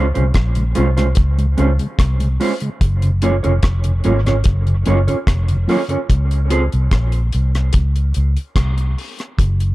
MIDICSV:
0, 0, Header, 1, 5, 480
1, 0, Start_track
1, 0, Key_signature, -5, "major"
1, 0, Tempo, 820793
1, 1644, Time_signature, 4, 2, 24, 8
1, 5701, End_track
2, 0, Start_track
2, 0, Title_t, "Clean electric guitar"
2, 0, Program_c, 0, 27
2, 85, Note_on_c, 0, 72, 58
2, 88, Note_on_c, 0, 65, 53
2, 89, Note_on_c, 0, 61, 55
2, 92, Note_on_c, 0, 56, 52
2, 135, Note_off_c, 0, 72, 0
2, 136, Note_off_c, 0, 65, 0
2, 137, Note_off_c, 0, 61, 0
2, 138, Note_off_c, 0, 56, 0
2, 438, Note_on_c, 0, 56, 82
2, 441, Note_on_c, 0, 61, 75
2, 443, Note_on_c, 0, 65, 84
2, 446, Note_on_c, 0, 72, 83
2, 507, Note_off_c, 0, 56, 0
2, 508, Note_off_c, 0, 61, 0
2, 509, Note_off_c, 0, 65, 0
2, 511, Note_off_c, 0, 72, 0
2, 565, Note_on_c, 0, 72, 66
2, 567, Note_on_c, 0, 65, 60
2, 571, Note_on_c, 0, 56, 50
2, 571, Note_on_c, 0, 61, 48
2, 615, Note_off_c, 0, 65, 0
2, 615, Note_off_c, 0, 72, 0
2, 618, Note_off_c, 0, 56, 0
2, 618, Note_off_c, 0, 61, 0
2, 919, Note_on_c, 0, 56, 64
2, 922, Note_on_c, 0, 61, 72
2, 926, Note_on_c, 0, 65, 73
2, 928, Note_on_c, 0, 72, 69
2, 987, Note_off_c, 0, 56, 0
2, 989, Note_off_c, 0, 61, 0
2, 990, Note_off_c, 0, 65, 0
2, 992, Note_off_c, 0, 72, 0
2, 1403, Note_on_c, 0, 56, 74
2, 1406, Note_on_c, 0, 61, 85
2, 1408, Note_on_c, 0, 65, 71
2, 1412, Note_on_c, 0, 72, 78
2, 1469, Note_off_c, 0, 56, 0
2, 1471, Note_off_c, 0, 61, 0
2, 1471, Note_off_c, 0, 65, 0
2, 1474, Note_off_c, 0, 72, 0
2, 1885, Note_on_c, 0, 61, 71
2, 1888, Note_on_c, 0, 65, 78
2, 1890, Note_on_c, 0, 70, 77
2, 1893, Note_on_c, 0, 73, 86
2, 1950, Note_off_c, 0, 61, 0
2, 1951, Note_off_c, 0, 65, 0
2, 1952, Note_off_c, 0, 70, 0
2, 1954, Note_off_c, 0, 73, 0
2, 2006, Note_on_c, 0, 73, 64
2, 2010, Note_on_c, 0, 70, 64
2, 2013, Note_on_c, 0, 61, 52
2, 2013, Note_on_c, 0, 65, 61
2, 2055, Note_off_c, 0, 73, 0
2, 2057, Note_off_c, 0, 70, 0
2, 2058, Note_off_c, 0, 61, 0
2, 2058, Note_off_c, 0, 65, 0
2, 2366, Note_on_c, 0, 61, 71
2, 2369, Note_on_c, 0, 65, 80
2, 2371, Note_on_c, 0, 70, 72
2, 2373, Note_on_c, 0, 73, 77
2, 2431, Note_off_c, 0, 61, 0
2, 2432, Note_off_c, 0, 65, 0
2, 2433, Note_off_c, 0, 70, 0
2, 2434, Note_off_c, 0, 73, 0
2, 2492, Note_on_c, 0, 73, 62
2, 2495, Note_on_c, 0, 70, 60
2, 2496, Note_on_c, 0, 65, 60
2, 2499, Note_on_c, 0, 61, 50
2, 2538, Note_off_c, 0, 73, 0
2, 2539, Note_off_c, 0, 70, 0
2, 2540, Note_off_c, 0, 65, 0
2, 2542, Note_off_c, 0, 61, 0
2, 2845, Note_on_c, 0, 61, 76
2, 2848, Note_on_c, 0, 65, 78
2, 2850, Note_on_c, 0, 70, 73
2, 2853, Note_on_c, 0, 73, 83
2, 2910, Note_off_c, 0, 61, 0
2, 2911, Note_off_c, 0, 65, 0
2, 2912, Note_off_c, 0, 70, 0
2, 2914, Note_off_c, 0, 73, 0
2, 2967, Note_on_c, 0, 73, 58
2, 2968, Note_on_c, 0, 70, 51
2, 2973, Note_on_c, 0, 65, 47
2, 2974, Note_on_c, 0, 61, 47
2, 3016, Note_off_c, 0, 70, 0
2, 3016, Note_off_c, 0, 73, 0
2, 3019, Note_off_c, 0, 61, 0
2, 3019, Note_off_c, 0, 65, 0
2, 3327, Note_on_c, 0, 61, 80
2, 3329, Note_on_c, 0, 65, 89
2, 3331, Note_on_c, 0, 70, 98
2, 3334, Note_on_c, 0, 73, 96
2, 3391, Note_off_c, 0, 61, 0
2, 3392, Note_off_c, 0, 65, 0
2, 3393, Note_off_c, 0, 70, 0
2, 3395, Note_off_c, 0, 73, 0
2, 3446, Note_on_c, 0, 73, 59
2, 3449, Note_on_c, 0, 70, 51
2, 3451, Note_on_c, 0, 65, 47
2, 3453, Note_on_c, 0, 61, 49
2, 3495, Note_off_c, 0, 73, 0
2, 3496, Note_off_c, 0, 70, 0
2, 3498, Note_off_c, 0, 65, 0
2, 3499, Note_off_c, 0, 61, 0
2, 3803, Note_on_c, 0, 60, 66
2, 3803, Note_on_c, 0, 65, 89
2, 3806, Note_on_c, 0, 68, 76
2, 3811, Note_on_c, 0, 72, 88
2, 3869, Note_off_c, 0, 60, 0
2, 3870, Note_off_c, 0, 65, 0
2, 3871, Note_off_c, 0, 68, 0
2, 3873, Note_off_c, 0, 72, 0
2, 5701, End_track
3, 0, Start_track
3, 0, Title_t, "Tonewheel organ"
3, 0, Program_c, 1, 16
3, 90, Note_on_c, 1, 49, 55
3, 91, Note_on_c, 1, 56, 62
3, 137, Note_off_c, 1, 49, 0
3, 138, Note_off_c, 1, 56, 0
3, 329, Note_on_c, 1, 56, 49
3, 330, Note_on_c, 1, 49, 53
3, 377, Note_off_c, 1, 49, 0
3, 377, Note_off_c, 1, 56, 0
3, 447, Note_on_c, 1, 60, 68
3, 449, Note_on_c, 1, 61, 65
3, 452, Note_on_c, 1, 65, 75
3, 497, Note_off_c, 1, 60, 0
3, 498, Note_off_c, 1, 61, 0
3, 499, Note_off_c, 1, 65, 0
3, 568, Note_on_c, 1, 49, 60
3, 569, Note_on_c, 1, 56, 61
3, 616, Note_off_c, 1, 49, 0
3, 617, Note_off_c, 1, 56, 0
3, 808, Note_on_c, 1, 56, 50
3, 810, Note_on_c, 1, 49, 52
3, 856, Note_off_c, 1, 56, 0
3, 857, Note_off_c, 1, 49, 0
3, 923, Note_on_c, 1, 60, 68
3, 925, Note_on_c, 1, 61, 67
3, 927, Note_on_c, 1, 65, 73
3, 975, Note_off_c, 1, 60, 0
3, 976, Note_off_c, 1, 61, 0
3, 977, Note_off_c, 1, 65, 0
3, 1045, Note_on_c, 1, 49, 59
3, 1045, Note_on_c, 1, 56, 54
3, 1094, Note_off_c, 1, 49, 0
3, 1095, Note_off_c, 1, 56, 0
3, 1287, Note_on_c, 1, 49, 55
3, 1287, Note_on_c, 1, 56, 60
3, 1336, Note_off_c, 1, 49, 0
3, 1336, Note_off_c, 1, 56, 0
3, 1403, Note_on_c, 1, 60, 66
3, 1406, Note_on_c, 1, 61, 59
3, 1406, Note_on_c, 1, 65, 77
3, 1455, Note_off_c, 1, 60, 0
3, 1456, Note_off_c, 1, 61, 0
3, 1456, Note_off_c, 1, 65, 0
3, 1530, Note_on_c, 1, 49, 58
3, 1530, Note_on_c, 1, 56, 55
3, 1577, Note_off_c, 1, 49, 0
3, 1577, Note_off_c, 1, 56, 0
3, 1772, Note_on_c, 1, 42, 63
3, 1775, Note_on_c, 1, 49, 58
3, 1818, Note_off_c, 1, 42, 0
3, 1819, Note_off_c, 1, 49, 0
3, 1887, Note_on_c, 1, 54, 70
3, 1891, Note_on_c, 1, 58, 69
3, 1891, Note_on_c, 1, 65, 72
3, 1937, Note_off_c, 1, 54, 0
3, 1938, Note_off_c, 1, 58, 0
3, 1939, Note_off_c, 1, 65, 0
3, 2005, Note_on_c, 1, 49, 56
3, 2006, Note_on_c, 1, 42, 59
3, 2054, Note_off_c, 1, 49, 0
3, 2055, Note_off_c, 1, 42, 0
3, 2247, Note_on_c, 1, 42, 51
3, 2249, Note_on_c, 1, 49, 54
3, 2295, Note_off_c, 1, 42, 0
3, 2296, Note_off_c, 1, 49, 0
3, 2363, Note_on_c, 1, 54, 71
3, 2363, Note_on_c, 1, 58, 60
3, 2365, Note_on_c, 1, 65, 82
3, 2415, Note_off_c, 1, 54, 0
3, 2415, Note_off_c, 1, 58, 0
3, 2416, Note_off_c, 1, 65, 0
3, 2483, Note_on_c, 1, 42, 60
3, 2484, Note_on_c, 1, 49, 54
3, 2533, Note_off_c, 1, 42, 0
3, 2534, Note_off_c, 1, 49, 0
3, 2728, Note_on_c, 1, 42, 52
3, 2730, Note_on_c, 1, 49, 56
3, 2776, Note_off_c, 1, 42, 0
3, 2777, Note_off_c, 1, 49, 0
3, 2840, Note_on_c, 1, 54, 61
3, 2843, Note_on_c, 1, 58, 60
3, 2843, Note_on_c, 1, 65, 75
3, 2893, Note_off_c, 1, 54, 0
3, 2895, Note_off_c, 1, 58, 0
3, 2895, Note_off_c, 1, 65, 0
3, 2967, Note_on_c, 1, 49, 57
3, 2969, Note_on_c, 1, 42, 57
3, 3016, Note_off_c, 1, 42, 0
3, 3016, Note_off_c, 1, 49, 0
3, 3207, Note_on_c, 1, 42, 58
3, 3208, Note_on_c, 1, 49, 57
3, 3255, Note_off_c, 1, 42, 0
3, 3256, Note_off_c, 1, 49, 0
3, 3319, Note_on_c, 1, 54, 67
3, 3319, Note_on_c, 1, 58, 63
3, 3322, Note_on_c, 1, 65, 76
3, 3373, Note_off_c, 1, 54, 0
3, 3373, Note_off_c, 1, 58, 0
3, 3374, Note_off_c, 1, 65, 0
3, 3440, Note_on_c, 1, 42, 53
3, 3443, Note_on_c, 1, 49, 53
3, 3492, Note_off_c, 1, 42, 0
3, 3493, Note_off_c, 1, 49, 0
3, 5701, End_track
4, 0, Start_track
4, 0, Title_t, "Fingered electric bass"
4, 0, Program_c, 2, 33
4, 0, Note_on_c, 2, 37, 100
4, 68, Note_off_c, 2, 37, 0
4, 98, Note_on_c, 2, 36, 72
4, 200, Note_off_c, 2, 36, 0
4, 208, Note_on_c, 2, 34, 90
4, 426, Note_off_c, 2, 34, 0
4, 455, Note_on_c, 2, 36, 78
4, 670, Note_off_c, 2, 36, 0
4, 690, Note_on_c, 2, 37, 87
4, 907, Note_off_c, 2, 37, 0
4, 929, Note_on_c, 2, 37, 91
4, 1041, Note_off_c, 2, 37, 0
4, 1167, Note_on_c, 2, 36, 81
4, 1386, Note_off_c, 2, 36, 0
4, 1647, Note_on_c, 2, 30, 95
4, 1986, Note_off_c, 2, 30, 0
4, 2018, Note_on_c, 2, 29, 86
4, 2119, Note_off_c, 2, 29, 0
4, 2126, Note_on_c, 2, 29, 85
4, 2345, Note_off_c, 2, 29, 0
4, 2373, Note_on_c, 2, 32, 68
4, 2589, Note_off_c, 2, 32, 0
4, 2612, Note_on_c, 2, 30, 93
4, 2828, Note_off_c, 2, 30, 0
4, 2855, Note_on_c, 2, 30, 96
4, 2964, Note_off_c, 2, 30, 0
4, 3087, Note_on_c, 2, 29, 87
4, 3305, Note_off_c, 2, 29, 0
4, 3570, Note_on_c, 2, 37, 106
4, 3908, Note_off_c, 2, 37, 0
4, 3939, Note_on_c, 2, 36, 80
4, 4040, Note_off_c, 2, 36, 0
4, 4050, Note_on_c, 2, 34, 98
4, 4268, Note_off_c, 2, 34, 0
4, 4296, Note_on_c, 2, 36, 84
4, 4511, Note_off_c, 2, 36, 0
4, 4531, Note_on_c, 2, 37, 96
4, 4748, Note_off_c, 2, 37, 0
4, 4776, Note_on_c, 2, 37, 82
4, 4885, Note_off_c, 2, 37, 0
4, 5010, Note_on_c, 2, 36, 77
4, 5228, Note_off_c, 2, 36, 0
4, 5493, Note_on_c, 2, 30, 106
4, 5701, Note_off_c, 2, 30, 0
4, 5701, End_track
5, 0, Start_track
5, 0, Title_t, "Drums"
5, 89, Note_on_c, 9, 42, 48
5, 148, Note_off_c, 9, 42, 0
5, 199, Note_on_c, 9, 42, 69
5, 202, Note_on_c, 9, 36, 104
5, 207, Note_on_c, 9, 37, 104
5, 258, Note_off_c, 9, 42, 0
5, 260, Note_off_c, 9, 36, 0
5, 266, Note_off_c, 9, 37, 0
5, 323, Note_on_c, 9, 42, 57
5, 381, Note_off_c, 9, 42, 0
5, 439, Note_on_c, 9, 42, 67
5, 498, Note_off_c, 9, 42, 0
5, 570, Note_on_c, 9, 42, 48
5, 573, Note_on_c, 9, 37, 58
5, 629, Note_off_c, 9, 42, 0
5, 632, Note_off_c, 9, 37, 0
5, 673, Note_on_c, 9, 42, 84
5, 684, Note_on_c, 9, 36, 110
5, 731, Note_off_c, 9, 42, 0
5, 743, Note_off_c, 9, 36, 0
5, 810, Note_on_c, 9, 42, 48
5, 869, Note_off_c, 9, 42, 0
5, 922, Note_on_c, 9, 42, 61
5, 981, Note_off_c, 9, 42, 0
5, 1049, Note_on_c, 9, 42, 44
5, 1107, Note_off_c, 9, 42, 0
5, 1162, Note_on_c, 9, 36, 109
5, 1165, Note_on_c, 9, 42, 89
5, 1168, Note_on_c, 9, 37, 94
5, 1220, Note_off_c, 9, 36, 0
5, 1224, Note_off_c, 9, 42, 0
5, 1226, Note_off_c, 9, 37, 0
5, 1287, Note_on_c, 9, 42, 57
5, 1346, Note_off_c, 9, 42, 0
5, 1407, Note_on_c, 9, 46, 69
5, 1465, Note_off_c, 9, 46, 0
5, 1522, Note_on_c, 9, 42, 50
5, 1581, Note_off_c, 9, 42, 0
5, 1643, Note_on_c, 9, 36, 99
5, 1644, Note_on_c, 9, 42, 91
5, 1702, Note_off_c, 9, 36, 0
5, 1703, Note_off_c, 9, 42, 0
5, 1767, Note_on_c, 9, 42, 54
5, 1826, Note_off_c, 9, 42, 0
5, 1882, Note_on_c, 9, 42, 78
5, 1940, Note_off_c, 9, 42, 0
5, 2011, Note_on_c, 9, 42, 48
5, 2069, Note_off_c, 9, 42, 0
5, 2120, Note_on_c, 9, 42, 73
5, 2123, Note_on_c, 9, 36, 103
5, 2128, Note_on_c, 9, 37, 105
5, 2179, Note_off_c, 9, 42, 0
5, 2181, Note_off_c, 9, 36, 0
5, 2187, Note_off_c, 9, 37, 0
5, 2245, Note_on_c, 9, 42, 58
5, 2303, Note_off_c, 9, 42, 0
5, 2361, Note_on_c, 9, 42, 70
5, 2420, Note_off_c, 9, 42, 0
5, 2494, Note_on_c, 9, 42, 50
5, 2497, Note_on_c, 9, 37, 64
5, 2552, Note_off_c, 9, 42, 0
5, 2555, Note_off_c, 9, 37, 0
5, 2596, Note_on_c, 9, 42, 94
5, 2605, Note_on_c, 9, 36, 104
5, 2655, Note_off_c, 9, 42, 0
5, 2664, Note_off_c, 9, 36, 0
5, 2730, Note_on_c, 9, 42, 44
5, 2788, Note_off_c, 9, 42, 0
5, 2840, Note_on_c, 9, 42, 71
5, 2898, Note_off_c, 9, 42, 0
5, 2970, Note_on_c, 9, 42, 52
5, 3029, Note_off_c, 9, 42, 0
5, 3082, Note_on_c, 9, 36, 110
5, 3086, Note_on_c, 9, 42, 82
5, 3088, Note_on_c, 9, 37, 104
5, 3141, Note_off_c, 9, 36, 0
5, 3144, Note_off_c, 9, 42, 0
5, 3147, Note_off_c, 9, 37, 0
5, 3207, Note_on_c, 9, 42, 55
5, 3266, Note_off_c, 9, 42, 0
5, 3326, Note_on_c, 9, 46, 73
5, 3385, Note_off_c, 9, 46, 0
5, 3445, Note_on_c, 9, 42, 50
5, 3504, Note_off_c, 9, 42, 0
5, 3565, Note_on_c, 9, 36, 104
5, 3567, Note_on_c, 9, 42, 96
5, 3623, Note_off_c, 9, 36, 0
5, 3626, Note_off_c, 9, 42, 0
5, 3691, Note_on_c, 9, 42, 49
5, 3749, Note_off_c, 9, 42, 0
5, 3804, Note_on_c, 9, 42, 80
5, 3862, Note_off_c, 9, 42, 0
5, 3932, Note_on_c, 9, 42, 46
5, 3991, Note_off_c, 9, 42, 0
5, 4043, Note_on_c, 9, 42, 70
5, 4044, Note_on_c, 9, 36, 108
5, 4051, Note_on_c, 9, 37, 100
5, 4102, Note_off_c, 9, 36, 0
5, 4102, Note_off_c, 9, 42, 0
5, 4110, Note_off_c, 9, 37, 0
5, 4165, Note_on_c, 9, 42, 59
5, 4223, Note_off_c, 9, 42, 0
5, 4284, Note_on_c, 9, 42, 72
5, 4342, Note_off_c, 9, 42, 0
5, 4414, Note_on_c, 9, 42, 47
5, 4417, Note_on_c, 9, 37, 61
5, 4473, Note_off_c, 9, 42, 0
5, 4475, Note_off_c, 9, 37, 0
5, 4519, Note_on_c, 9, 42, 96
5, 4526, Note_on_c, 9, 36, 107
5, 4577, Note_off_c, 9, 42, 0
5, 4585, Note_off_c, 9, 36, 0
5, 4653, Note_on_c, 9, 42, 43
5, 4711, Note_off_c, 9, 42, 0
5, 4762, Note_on_c, 9, 42, 60
5, 4820, Note_off_c, 9, 42, 0
5, 4892, Note_on_c, 9, 42, 48
5, 4951, Note_off_c, 9, 42, 0
5, 5004, Note_on_c, 9, 36, 113
5, 5005, Note_on_c, 9, 42, 86
5, 5008, Note_on_c, 9, 37, 101
5, 5062, Note_off_c, 9, 36, 0
5, 5064, Note_off_c, 9, 42, 0
5, 5066, Note_off_c, 9, 37, 0
5, 5132, Note_on_c, 9, 42, 50
5, 5191, Note_off_c, 9, 42, 0
5, 5254, Note_on_c, 9, 46, 74
5, 5312, Note_off_c, 9, 46, 0
5, 5372, Note_on_c, 9, 42, 46
5, 5380, Note_on_c, 9, 37, 53
5, 5431, Note_off_c, 9, 42, 0
5, 5439, Note_off_c, 9, 37, 0
5, 5489, Note_on_c, 9, 36, 106
5, 5492, Note_on_c, 9, 42, 90
5, 5547, Note_off_c, 9, 36, 0
5, 5551, Note_off_c, 9, 42, 0
5, 5616, Note_on_c, 9, 42, 52
5, 5674, Note_off_c, 9, 42, 0
5, 5701, End_track
0, 0, End_of_file